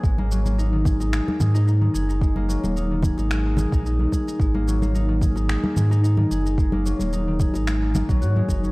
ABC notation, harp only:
X:1
M:4/4
L:1/16
Q:"Swing 16ths" 1/4=110
K:D#phr
V:1 name="Harp"
G, A, F, A, D D, G D G, A, G D D D, G D | G, A, F, A, D D, G D G, A, G D D D, G D | G, A, F, A, D D, G D G, A, G D D D, G D | G, A, F, A, D D, G D G, A, D, F, F G, D C |]